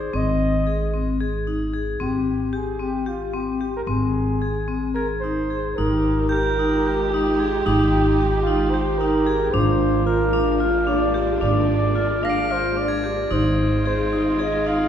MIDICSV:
0, 0, Header, 1, 7, 480
1, 0, Start_track
1, 0, Tempo, 537634
1, 118, Time_signature, 7, 3, 24, 8
1, 9717, Tempo, 542495
1, 13256, End_track
2, 0, Start_track
2, 0, Title_t, "Crotales"
2, 0, Program_c, 0, 9
2, 5617, Note_on_c, 0, 91, 61
2, 6305, Note_off_c, 0, 91, 0
2, 10924, Note_on_c, 0, 94, 63
2, 10966, Note_on_c, 0, 98, 46
2, 11486, Note_on_c, 0, 92, 48
2, 11618, Note_off_c, 0, 94, 0
2, 11639, Note_off_c, 0, 98, 0
2, 12079, Note_off_c, 0, 92, 0
2, 13256, End_track
3, 0, Start_track
3, 0, Title_t, "Flugelhorn"
3, 0, Program_c, 1, 56
3, 0, Note_on_c, 1, 72, 74
3, 142, Note_on_c, 1, 75, 81
3, 156, Note_off_c, 1, 72, 0
3, 1085, Note_off_c, 1, 75, 0
3, 1796, Note_on_c, 1, 67, 72
3, 2285, Note_on_c, 1, 68, 73
3, 2299, Note_off_c, 1, 67, 0
3, 2523, Note_on_c, 1, 67, 82
3, 2536, Note_off_c, 1, 68, 0
3, 2751, Note_on_c, 1, 65, 70
3, 2764, Note_off_c, 1, 67, 0
3, 2997, Note_on_c, 1, 67, 75
3, 3011, Note_off_c, 1, 65, 0
3, 3349, Note_off_c, 1, 67, 0
3, 3360, Note_on_c, 1, 70, 75
3, 3410, Note_off_c, 1, 70, 0
3, 3480, Note_on_c, 1, 68, 80
3, 4403, Note_off_c, 1, 68, 0
3, 4412, Note_on_c, 1, 70, 74
3, 4526, Note_off_c, 1, 70, 0
3, 4648, Note_on_c, 1, 72, 80
3, 5139, Note_on_c, 1, 70, 83
3, 5153, Note_off_c, 1, 72, 0
3, 5615, Note_off_c, 1, 70, 0
3, 5620, Note_on_c, 1, 70, 90
3, 6342, Note_on_c, 1, 67, 79
3, 6355, Note_off_c, 1, 70, 0
3, 6808, Note_off_c, 1, 67, 0
3, 6813, Note_on_c, 1, 67, 82
3, 7528, Note_on_c, 1, 65, 86
3, 7541, Note_off_c, 1, 67, 0
3, 7777, Note_on_c, 1, 72, 79
3, 7791, Note_off_c, 1, 65, 0
3, 8017, Note_on_c, 1, 70, 85
3, 8031, Note_off_c, 1, 72, 0
3, 8496, Note_on_c, 1, 72, 88
3, 8509, Note_off_c, 1, 70, 0
3, 8984, Note_on_c, 1, 70, 88
3, 8998, Note_off_c, 1, 72, 0
3, 9466, Note_off_c, 1, 70, 0
3, 9714, Note_on_c, 1, 74, 88
3, 10159, Note_off_c, 1, 74, 0
3, 10195, Note_on_c, 1, 74, 90
3, 10913, Note_on_c, 1, 77, 99
3, 10926, Note_off_c, 1, 74, 0
3, 11168, Note_on_c, 1, 72, 82
3, 11181, Note_off_c, 1, 77, 0
3, 11397, Note_on_c, 1, 74, 88
3, 11411, Note_off_c, 1, 72, 0
3, 11879, Note_on_c, 1, 72, 83
3, 11892, Note_off_c, 1, 74, 0
3, 12353, Note_off_c, 1, 72, 0
3, 12359, Note_on_c, 1, 72, 82
3, 12835, Note_on_c, 1, 75, 79
3, 12848, Note_off_c, 1, 72, 0
3, 13072, Note_on_c, 1, 77, 83
3, 13085, Note_off_c, 1, 75, 0
3, 13256, Note_off_c, 1, 77, 0
3, 13256, End_track
4, 0, Start_track
4, 0, Title_t, "French horn"
4, 0, Program_c, 2, 60
4, 5171, Note_on_c, 2, 67, 104
4, 8528, Note_on_c, 2, 65, 97
4, 8541, Note_off_c, 2, 67, 0
4, 11637, Note_off_c, 2, 65, 0
4, 11871, Note_on_c, 2, 63, 88
4, 13256, Note_off_c, 2, 63, 0
4, 13256, End_track
5, 0, Start_track
5, 0, Title_t, "Vibraphone"
5, 0, Program_c, 3, 11
5, 0, Note_on_c, 3, 68, 57
5, 90, Note_off_c, 3, 68, 0
5, 121, Note_on_c, 3, 60, 76
5, 549, Note_off_c, 3, 60, 0
5, 595, Note_on_c, 3, 68, 61
5, 809, Note_off_c, 3, 68, 0
5, 837, Note_on_c, 3, 60, 67
5, 1049, Note_off_c, 3, 60, 0
5, 1077, Note_on_c, 3, 68, 67
5, 1288, Note_off_c, 3, 68, 0
5, 1314, Note_on_c, 3, 63, 62
5, 1526, Note_off_c, 3, 63, 0
5, 1549, Note_on_c, 3, 68, 61
5, 1762, Note_off_c, 3, 68, 0
5, 1785, Note_on_c, 3, 60, 79
5, 2213, Note_off_c, 3, 60, 0
5, 2257, Note_on_c, 3, 67, 63
5, 2473, Note_off_c, 3, 67, 0
5, 2494, Note_on_c, 3, 60, 66
5, 2712, Note_off_c, 3, 60, 0
5, 2734, Note_on_c, 3, 67, 66
5, 2951, Note_off_c, 3, 67, 0
5, 2977, Note_on_c, 3, 60, 69
5, 3194, Note_off_c, 3, 60, 0
5, 3220, Note_on_c, 3, 67, 64
5, 3435, Note_off_c, 3, 67, 0
5, 3457, Note_on_c, 3, 60, 74
5, 3891, Note_off_c, 3, 60, 0
5, 3942, Note_on_c, 3, 68, 60
5, 4160, Note_off_c, 3, 68, 0
5, 4178, Note_on_c, 3, 60, 70
5, 4400, Note_off_c, 3, 60, 0
5, 4427, Note_on_c, 3, 68, 58
5, 4647, Note_off_c, 3, 68, 0
5, 4675, Note_on_c, 3, 63, 61
5, 4894, Note_off_c, 3, 63, 0
5, 4914, Note_on_c, 3, 68, 57
5, 5135, Note_off_c, 3, 68, 0
5, 5160, Note_on_c, 3, 63, 80
5, 5598, Note_off_c, 3, 63, 0
5, 5645, Note_on_c, 3, 67, 63
5, 5863, Note_off_c, 3, 67, 0
5, 5887, Note_on_c, 3, 63, 68
5, 6103, Note_off_c, 3, 63, 0
5, 6129, Note_on_c, 3, 67, 66
5, 6344, Note_off_c, 3, 67, 0
5, 6374, Note_on_c, 3, 63, 76
5, 6586, Note_off_c, 3, 63, 0
5, 6604, Note_on_c, 3, 68, 64
5, 6820, Note_off_c, 3, 68, 0
5, 6840, Note_on_c, 3, 63, 85
5, 7271, Note_off_c, 3, 63, 0
5, 7325, Note_on_c, 3, 67, 67
5, 7539, Note_off_c, 3, 67, 0
5, 7563, Note_on_c, 3, 63, 68
5, 7777, Note_off_c, 3, 63, 0
5, 7802, Note_on_c, 3, 67, 77
5, 8016, Note_off_c, 3, 67, 0
5, 8042, Note_on_c, 3, 63, 75
5, 8255, Note_off_c, 3, 63, 0
5, 8273, Note_on_c, 3, 68, 71
5, 8489, Note_off_c, 3, 68, 0
5, 8515, Note_on_c, 3, 62, 90
5, 8944, Note_off_c, 3, 62, 0
5, 8988, Note_on_c, 3, 65, 68
5, 9205, Note_off_c, 3, 65, 0
5, 9225, Note_on_c, 3, 62, 81
5, 9444, Note_off_c, 3, 62, 0
5, 9465, Note_on_c, 3, 65, 72
5, 9684, Note_off_c, 3, 65, 0
5, 9704, Note_on_c, 3, 62, 75
5, 9923, Note_off_c, 3, 62, 0
5, 9945, Note_on_c, 3, 67, 68
5, 10163, Note_off_c, 3, 67, 0
5, 10185, Note_on_c, 3, 62, 85
5, 10617, Note_off_c, 3, 62, 0
5, 10665, Note_on_c, 3, 65, 60
5, 10882, Note_off_c, 3, 65, 0
5, 10907, Note_on_c, 3, 62, 70
5, 11123, Note_off_c, 3, 62, 0
5, 11150, Note_on_c, 3, 65, 62
5, 11365, Note_off_c, 3, 65, 0
5, 11382, Note_on_c, 3, 62, 62
5, 11602, Note_off_c, 3, 62, 0
5, 11622, Note_on_c, 3, 67, 65
5, 11843, Note_off_c, 3, 67, 0
5, 11861, Note_on_c, 3, 63, 78
5, 12300, Note_off_c, 3, 63, 0
5, 12346, Note_on_c, 3, 68, 66
5, 12566, Note_off_c, 3, 68, 0
5, 12587, Note_on_c, 3, 63, 72
5, 12807, Note_off_c, 3, 63, 0
5, 12821, Note_on_c, 3, 68, 69
5, 13043, Note_off_c, 3, 68, 0
5, 13062, Note_on_c, 3, 63, 75
5, 13256, Note_off_c, 3, 63, 0
5, 13256, End_track
6, 0, Start_track
6, 0, Title_t, "String section"
6, 0, Program_c, 4, 48
6, 5162, Note_on_c, 4, 67, 68
6, 5163, Note_on_c, 4, 65, 60
6, 5166, Note_on_c, 4, 56, 66
6, 5167, Note_on_c, 4, 63, 59
6, 8483, Note_off_c, 4, 65, 0
6, 8483, Note_off_c, 4, 67, 0
6, 8485, Note_off_c, 4, 56, 0
6, 8486, Note_off_c, 4, 63, 0
6, 8498, Note_on_c, 4, 62, 78
6, 8499, Note_on_c, 4, 56, 74
6, 8505, Note_on_c, 4, 58, 69
6, 11830, Note_off_c, 4, 62, 0
6, 11831, Note_off_c, 4, 56, 0
6, 11834, Note_off_c, 4, 58, 0
6, 11861, Note_on_c, 4, 56, 68
6, 11865, Note_on_c, 4, 65, 75
6, 11870, Note_on_c, 4, 60, 57
6, 13256, Note_off_c, 4, 56, 0
6, 13256, Note_off_c, 4, 60, 0
6, 13256, Note_off_c, 4, 65, 0
6, 13256, End_track
7, 0, Start_track
7, 0, Title_t, "Upright bass"
7, 0, Program_c, 5, 32
7, 119, Note_on_c, 5, 32, 67
7, 1754, Note_off_c, 5, 32, 0
7, 1792, Note_on_c, 5, 32, 61
7, 3429, Note_off_c, 5, 32, 0
7, 3454, Note_on_c, 5, 32, 71
7, 5126, Note_off_c, 5, 32, 0
7, 5164, Note_on_c, 5, 32, 68
7, 6813, Note_off_c, 5, 32, 0
7, 6840, Note_on_c, 5, 32, 75
7, 8480, Note_off_c, 5, 32, 0
7, 8514, Note_on_c, 5, 32, 77
7, 10157, Note_off_c, 5, 32, 0
7, 10191, Note_on_c, 5, 32, 76
7, 11839, Note_off_c, 5, 32, 0
7, 11865, Note_on_c, 5, 32, 70
7, 13256, Note_off_c, 5, 32, 0
7, 13256, End_track
0, 0, End_of_file